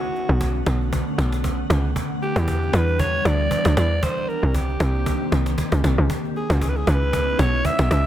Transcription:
Already playing: D3 A3 B3 C#4 F#4 F#5
0.04 cajon slap
0.15 cajon slap
0.29 B1, cajon slap
0.41 cajon bass
0.55 cajon slap
0.66 B1, cajon slap
0.81 cajon slap
0.93 cajon bass
1.07 cajon slap
1.18 B1, cajon slap
1.32 cajon slap
1.44 cajon bass
1.58 cajon slap
1.70 C#2, cajon slap
1.84 cajon slap
1.96 E3 G3 D4, cajon bass
2.10 cajon slap
2.22 G4, cajon slap
2.36 E2, cajon slap
2.48 cajon bass
2.62 cajon slap
2.73 E2 B4, cajon slap
2.88 cajon slap
2.99 C#5, cajon bass
3.14 cajon slap
3.25 D2 D5, cajon slap
3.40 cajon slap
3.51 cajon bass
3.65 D2, cajon slap
3.77 E2 D5, cajon slap
3.90 cajon slap
4.03 D#3 A#3 C4 D4 G4 C5, cajon bass
4.17 cajon slap
4.29 A#4, cajon slap
4.43 C2, cajon slap
4.55 G4, cajon bass
4.69 cajon slap
4.80 C2, cajon slap
4.95 cajon slap
5.06 cajon bass
5.21 cajon slap
5.32 C2, cajon slap
5.46 cajon slap
5.58 cajon bass, cajon slap
5.72 C#2, cajon slap
5.84 C2, cajon slap
5.98 C#2, cajon slap
6.10 G#3 B3 C#4 D#4 E4, cajon bass
6.24 cajon slap
6.36 G#4, cajon slap
6.50 C#2 F#4, cajon slap
6.62 G#4, cajon bass
6.69 B4
6.76 G#4, cajon slap
6.87 C#2 B4, cajon slap
7.02 cajon slap
7.13 cajon bass
7.28 cajon slap
7.39 B1 C#5, cajon slap
7.53 cajon slap
7.65 E5, cajon bass
7.79 B1, cajon slap
7.91 C#2 E5, cajon slap

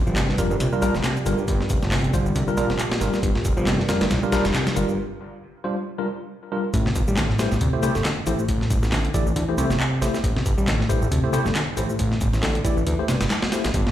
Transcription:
Already playing: F3 G3 A#3 D4 G4
0.07 G1 F3, shaker
0.16 C3, snare, clap, closed hi-hat, shaker
0.28 G2, snare
0.38 F2 G3 D4 F4 A#4, kick, closed hi-hat, shaker
0.50 G1 G2, shaker
0.60 C2 A#2, closed hi-hat, shaker
0.72 G3 D4 F4 A#4, shaker
0.82 A#1 G3 D4 F4 A#4, closed hi-hat, shaker
0.94 F1 G3, snare, shaker
1.04 C3, snare, clap, closed hi-hat, shaker
1.16 shaker
1.25 G1 D3 G3 D4 F4 A#4, closed hi-hat, shaker
1.38 G2, shaker
1.48 G1, kick, closed hi-hat, shaker
1.61 snare
1.69 F1, kick, closed hi-hat, shaker
1.82 G1, snare, shaker
1.91 C3, snare, clap, open hi-hat, shaker
2.04 closed hi-hat
2.13 D3 G3 D4 F4 C5, kick, closed hi-hat, shaker
2.26 G1, shaker
2.35 C2 D3, closed hi-hat, shaker
2.48 G3 D4 F4 A#4, shaker
2.57 A#1 A#2 G3 D4 F4 A#4, closed hi-hat, shaker
2.69 F1, snare, shaker
2.79 clap, closed hi-hat, shaker
2.92 snare, shaker
3.01 G1 G3 D4 F4 A#4, snare, closed hi-hat, shaker
3.13 snare, shaker
3.23 G1 G2, kick, closed hi-hat, shaker
3.35 A#2, snare
3.45 F1, kick, closed hi-hat, shaker
3.57 G1 F3, shaker
3.67 C3, snare, clap, closed hi-hat, shaker
3.79 G2, snare
3.89 F2 G3 D4 F4 A#4, snare, closed hi-hat, shaker
4.01 G1 G2, snare, closed hi-hat, shaker
4.10 C2 A#2, snare, closed hi-hat, shaker
4.23 G3 D4 F4 A#4, shaker
4.32 A#1 G3 D4 F4 A#4, snare, closed hi-hat, shaker
4.45 F1 G3, snare, closed hi-hat, shaker
4.54 C3, snare, clap, closed hi-hat, shaker
4.67 snare, closed hi-hat, shaker
4.76 G1 D3 G3 D4 F4 A#4, closed hi-hat, shaker
4.88 G2, shaker
5.64 G3 D4 F4 C5
5.99 G3 D4 F4 A#4
6.52 G3 D4 F4 A#4
6.74 A1 A2, kick, closed hi-hat, shaker
6.86 C3, snare
6.95 G1, kick, closed hi-hat, shaker
7.08 A1 G3, shaker
7.17 D3, snare, clap, closed hi-hat, shaker
7.30 A2, snare
7.39 G2 A3 E4 G4 C5, snare, closed hi-hat, shaker
7.51 A1 A2, snare, shaker
7.61 D2 C3, closed hi-hat, shaker
7.73 A3 E4 G4 C5
7.82 C2 A3 E4 G4 C5, closed hi-hat, shaker
7.95 G1 A3, snare, shaker
8.05 D3, snare, clap, closed hi-hat, shaker
8.26 A1 E3 A3 E4 G4 C5, closed hi-hat, shaker
8.39 A2, shaker
8.48 A1, kick, closed hi-hat, shaker
8.61 snare
8.70 G1, kick, closed hi-hat, shaker
8.82 A1, snare, shaker
8.92 D3, snare, clap, open hi-hat, shaker
9.05 closed hi-hat
9.14 E3 A3 E4 G4 D5, kick, closed hi-hat, shaker
9.26 A1, shaker
9.36 D2 E3, closed hi-hat, shaker
9.49 A3 E4 G4 C5
9.58 C2 C3 A3 E4 G4 C5, closed hi-hat, shaker
9.70 G1, snare, shaker
9.80 clap, shaker
10.02 A1 A3 E4 G4 C5, snare, closed hi-hat, shaker
10.14 snare, shaker
10.24 A1 A2, kick, closed hi-hat, shaker
10.36 C3, snare
10.46 G1, kick, closed hi-hat, shaker
10.58 A1 G3, shaker
10.67 D3, snare, clap, closed hi-hat, shaker
10.80 A2, snare
10.89 G2 A3 E4 G4 C5, kick, closed hi-hat, shaker
11.02 A1 A2, shaker
11.11 D2 C3, closed hi-hat, shaker
11.24 A3 E4 G4 C5
11.33 C2 A3 E4 G4 C5, closed hi-hat, shaker
11.45 G1 A3, snare, shaker
11.55 D3, snare, clap, closed hi-hat, shaker
11.77 A1 E3 A3 E4 G4 C5, closed hi-hat, shaker
11.89 A2, shaker
11.99 A1, kick, closed hi-hat, shaker
12.12 snare
12.21 G1, kick, closed hi-hat, shaker
12.33 A1, snare, shaker
12.43 D3, snare, clap, open hi-hat, shaker
12.55 closed hi-hat
12.65 E3 A3 E4 G4 D5, kick, closed hi-hat, shaker
12.77 A1, shaker
12.87 D2 E3, closed hi-hat, shaker
12.99 A3 E4 G4 C5
13.08 C2 G2, snare, closed hi-hat, shaker
13.21 G1, snare, closed hi-hat, shaker
13.30 snare, clap, closed hi-hat, shaker
13.42 snare
13.52 A3 E4 G4 C5, snare, closed hi-hat, shaker
13.64 A1, snare, closed hi-hat, shaker
13.74 G1 G2, kick, closed hi-hat, shaker
13.87 A#2, snare

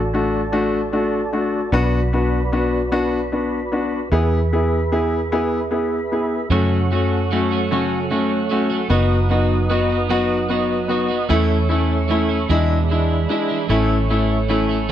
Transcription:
Already playing: A1 F#4 A4 D5 A5
0.14 A3 D4 F#4
0.52 A3 D4 F#4
0.93 A3 D4 F#4
1.33 A3 D4 F#4
1.72 B1 B3 D4 F#4 B4 B5
2.13 B3 D4 F#4
2.52 B3 D4 F#4
2.92 B3 D4 F#4
3.32 B3 D4 F#4
3.72 B3 D4 F#4
4.11 E2 B3 E4 G#4 E5 B5
4.53 B3 E4 G#4
4.92 B3 E4 G#4
5.32 B3 E4 G#4
5.71 B3 E4 G#4
6.12 B3 E4 G#4
6.50 F#2 C#3 F#3 A3 C#4 F#4 A4 C#5 F#5 C#6
6.91 F#3 A3 C#4 F#4
7.31 F#3 A3 C#4 F#4
7.51 F#3 A3 C#4 F#4
7.71 F#2 C#3 F#3 A3 C#4 F#4
8.10 F#3 A3 C#4 F#4
8.49 F#3 A3 C#4 F#4
8.70 F#3 A3 C#4 F#4
8.90 F#1 F#3 B3 D#4 F#4 B4 D#5 D#6
9.29 F#3 B3 D#4 F#4
9.69 F#3 B3 D#4 F#4
9.90 B3 D#4 F#4
10.09 F#3 B3 D#4 F#4
10.49 F#3 B3 D#4 F#4
10.88 F#3 B3 D#4 F#4
11.09 B3 D#4 F#4
11.29 E2 E3 A3 C#4 E4 A4 C#5 E5 C#6
11.69 E3 A3 C#4 E4
12.08 E3 A3 C#4 E4
12.29 A3 C#4 E4
12.49 E2 B2 E3 G#3 D4 E4 G#4 D5 B5
12.89 E3 G#3 D4 E4
13.29 E3 G#3 D4 E4
13.49 E3 G#3 D4 E4
13.69 A1 A2 E3 A3 C#4 E4 A4 C#5 C#6
14.09 E3 A3 C#4 E4
14.48 E3 A3 C#4 E4
14.69 A3 C#4 E4
14.88 A2

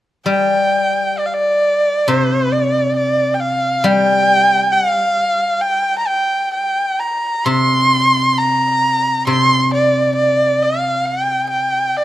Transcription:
0.26 G3 G5
1.18 D5
1.26 F5
1.34 D5
2.08 C3 C5
2.52 D5
2.96 D5
3.34 G5
3.40 F5
3.84 G3 G5
4.73 F5
5.61 G5
5.98 A#5
6.07 G5
6.54 G5
6.99 A#5
7.45 C3 C6
8.38 A#5
9.27 C3 C6
9.74 D5
10.16 D5
10.63 F5
11.06 G5
11.50 G5
11.97 D5

